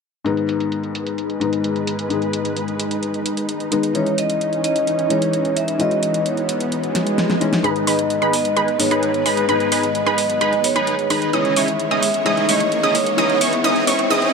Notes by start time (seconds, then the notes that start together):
0.24 G#2 D#3 G#3 B3 D#4 B4, closed hi-hat
0.37 closed hi-hat
0.49 closed hi-hat
0.60 closed hi-hat
0.72 closed hi-hat
0.83 closed hi-hat
0.95 closed hi-hat
1.07 closed hi-hat
1.18 closed hi-hat
1.30 closed hi-hat
1.40 G#2 D#3 G#3 B3 D#4, closed hi-hat
1.53 closed hi-hat
1.64 closed hi-hat
1.76 closed hi-hat
1.87 closed hi-hat
1.99 closed hi-hat
2.09 G#2 D#3 G#3 B3 G#4, closed hi-hat
2.22 closed hi-hat
2.33 closed hi-hat
2.45 closed hi-hat
2.57 closed hi-hat
2.68 closed hi-hat
2.80 closed hi-hat
2.91 closed hi-hat
3.03 closed hi-hat
3.14 closed hi-hat
3.26 closed hi-hat
3.37 closed hi-hat
3.49 closed hi-hat
3.60 closed hi-hat
3.71 D#3 G#3 B3 D#4, closed hi-hat
3.83 closed hi-hat
3.94 E3 G#3 C#4 D#4 C#5, closed hi-hat
4.06 closed hi-hat
4.18 D#5, closed hi-hat
4.30 closed hi-hat
4.41 closed hi-hat
4.53 closed hi-hat
4.64 D#5, closed hi-hat
4.76 closed hi-hat
4.87 closed hi-hat
4.99 closed hi-hat
5.09 E3 G#3 C#4 D#4 C#5, closed hi-hat
5.22 closed hi-hat
5.33 closed hi-hat
5.45 closed hi-hat
5.56 E5, closed hi-hat
5.68 closed hi-hat
5.78 E3 G#3 B3 C#4 F#4 D#5, closed hi-hat
5.91 closed hi-hat
6.03 closed hi-hat
6.14 closed hi-hat
6.26 C#5, closed hi-hat
6.37 closed hi-hat
6.49 closed hi-hat
6.60 closed hi-hat
6.72 closed hi-hat, swell
6.84 closed hi-hat
6.95 snare, closed hi-hat
7.07 closed hi-hat
7.18 snare, closed hi-hat
7.30 snare, closed hi-hat
7.41 E3 G#3 C#4 D#4, closed hi-hat
7.53 snare, closed hi-hat
7.63 G#2 D#3 G#3 B3 D#4 G#4 B4 B5, closed hi-hat, riser
7.76 closed hi-hat
7.87 D#4 G#4 B4 D#5 B5, open hi-hat
7.99 closed hi-hat
8.10 closed hi-hat
8.22 D#4 G#4 B4 B5, closed hi-hat
8.33 D#5, open hi-hat
8.45 closed hi-hat
8.57 D#4 G#4 B4 B5, closed hi-hat
8.68 closed hi-hat
8.78 G#2 D#3 G#3 B3 D#4 C#5, open hi-hat
8.91 D#4 G#4 B4 B5, closed hi-hat
9.03 closed hi-hat
9.14 closed hi-hat
9.26 D#4 G#4 B4 B5, open hi-hat
9.37 closed hi-hat
9.48 G#2 D#3 G#3 B3 D#4 G#4 B4 B5, closed hi-hat
9.60 closed hi-hat
9.72 D#4 G#4 B4 D#5 B5, open hi-hat
9.83 closed hi-hat
9.95 closed hi-hat
10.06 D#4 G#4 B4 B5, closed hi-hat
10.18 D#5, open hi-hat
10.30 closed hi-hat
10.41 D#4 G#4 B4 B5, closed hi-hat
10.53 closed hi-hat
10.64 C#5, open hi-hat
10.76 D#4 G#4 B4 B5, closed hi-hat
10.87 closed hi-hat
10.99 closed hi-hat
11.10 D#3 G#3 B3 D#4 G#4 B4 B5, open hi-hat
11.22 closed hi-hat
11.32 D#3 E3 G#3 C#4 D#4 E4 G#4 C#5 D#5 D#6, closed hi-hat
11.45 closed hi-hat
11.56 C#4 D#4 E4 G#4 C#5 E5 C#6, open hi-hat
11.68 closed hi-hat
11.79 closed hi-hat
11.91 C#4 D#4 E4 G#4 D#5 D#6, closed hi-hat
12.03 E5, open hi-hat
12.14 closed hi-hat
12.24 E3 G#3 C#4 D#4 E4 G#4 D#5 D#6, closed hi-hat
12.37 closed hi-hat
12.49 C#4 D#4 E4 G#4 C#5 D#5 C#6, open hi-hat
12.60 closed hi-hat
12.72 closed hi-hat
12.83 C#4 D#4 E4 G#4 D#5 D#6, closed hi-hat
12.95 C#5, open hi-hat
13.06 closed hi-hat
13.17 E3 G#3 C#4 D#4 E4 G#4 C#5 D#5 D#6, closed hi-hat
13.30 closed hi-hat
13.41 C#4 D#4 E4 G#4 C#5 E5 C#6, open hi-hat
13.53 closed hi-hat
13.63 E3 G#3 C#4 D#4 E4 G#4 D#5 D#6, closed hi-hat
13.76 closed hi-hat
13.87 C#4 D#4 E4 G#4 C#5 E5 C#6, open hi-hat
13.99 closed hi-hat
14.09 E3 G#3 C#4 D#4 E4 G#4 D#5 D#6, closed hi-hat, reverse cymbal
14.22 closed hi-hat